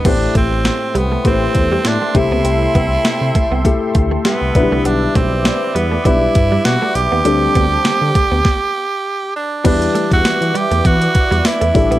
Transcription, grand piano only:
X:1
M:4/4
L:1/8
Q:"Swing 16ths" 1/4=100
K:Em
V:1 name="Grand piano"
[A,,A,EGc]3 z [A,EGBc]3 [C,A,EGc]- | [C,A,EGc]2 z2 [A,EGA]3 [D,F,G,DEB]- | [D,F,G,DEB]2 z2 [G,DEB]3 z | [D,G,CDA]3 z4 z |
[E,G,DEB]3 z4 [A,,G,DEA] |]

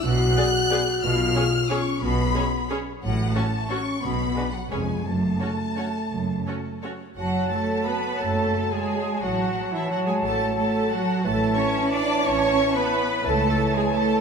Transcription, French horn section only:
X:1
M:3/4
L:1/8
Q:1/4=176
K:F#m
V:1 name="French horn section"
F6 | ^E4 C2 | B,4 z2 | F,2 A,2 C2 |
B,3 F, G,2 | A,6- | A,4 z2 | z2 [Fc]2 [Fc]2 |
z2 [Fc]2 [Fc]2 | z2 c2 [Fc]2 | z2 [Fc]2 [Fc]2 | z2 [Ec]2 [Ec]2 |
z2 [Ec]2 [Ec]2 | z2 [Ec]2 [Ec]2 |]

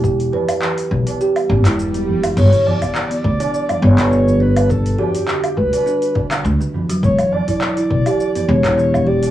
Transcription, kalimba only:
X:1
M:4/4
L:1/16
Q:"Swing 16ths" 1/4=103
K:Edor
V:1 name="Kalimba"
G2 B z E, z B, z G z B, E z G, z E, | z D, z B, z B,2 D2 G, z B, D, z D2 | D2 F z D, z G, z D2 D, D,2 D, z F, | z E, z E z E2 G2 B, z E E, z G2 |]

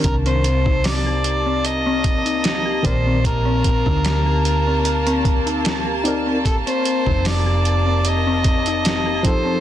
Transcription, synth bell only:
X:1
M:4/4
L:1/16
Q:"Swing 16ths" 1/4=75
K:Cdor
V:1 name="Synth bell"
z C2 E z G2 C z C2 E z G2 C | z C2 E z G2 C z C2 E z G2 C | z C2 E z G2 C z C2 E z G2 C |]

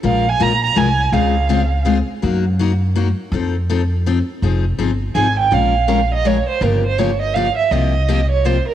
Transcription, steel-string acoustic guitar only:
X:1
M:3/4
L:1/16
Q:"Swing" 1/4=164
K:Fphr
V:1 name="Steel-string acoustic guitar"
[F,A,DFB]2 z2 [F,A,DFB] z3 [F,A,DFB] z3 | [D,A,CFA]2 z2 [D,A,CFA] z3 [D,A,CFA] z3 | [G,B,EG]2 z2 [G,B,EG] z3 [G,B,EG] z3 | [F,CE=A]2 z2 [F,CEA] z3 [F,CEA] z3 |
[K:Fm] [F,CEA]2 z2 [F,CEA] z3 [F,CEA] z3 | [F,A,DFB]2 z2 [F,A,DFB] z3 [F,A,DFB] z3 | [D,F,B,FG]2 z2 [D,F,B,FG] z3 [D,F,B,FG] z3 | [C,F,B,FG]2 z2 [C,F,B,FG] z3 [C,F,B,FG] z3 |]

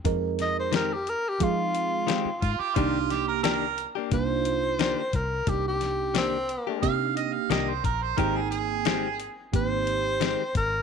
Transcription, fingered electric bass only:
X:1
M:4/4
L:1/16
Q:"Swing 16ths" 1/4=88
K:Cm
V:1 name="Fingered electric bass" clef=bass
F,,8 F,4- F, z A,, z | C,,8 C,,6 C,,2 | C,,8 C,4 C,,2 B,,,2 | A,,,8 A,,,6 A,,,2 |]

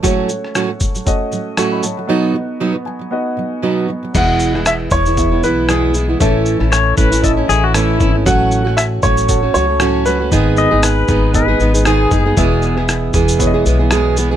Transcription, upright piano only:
X:1
M:4/4
L:1/8
Q:"Swing 16ths" 1/4=117
K:E
V:1 name="Upright piano"
z8 | z8 | f2 e c2 B G2 | A4 z4 |
f2 e c2 c2 B- | B6- B z | z8 |]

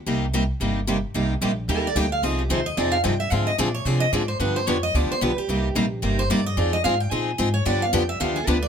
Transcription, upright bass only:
X:1
M:4/4
L:1/8
Q:"Swing" 1/4=221
K:Cm
V:1 name="Upright bass" clef=bass
C,,4 G,,,4 | C,,2 B,,,2 E,,2 D,,2 | C,,2 E,,2 F,,2 G,,2 | A,,2 B,,2 C,2 A,,2 |
G,,2 F,,2 D,, z =B,,, z | C,,2 B,,,2 G,,,2 G,,2 | F,,2 A,,2 B,,2 A,,2 | G,,2 F,,2 E,,2 D,,2 |]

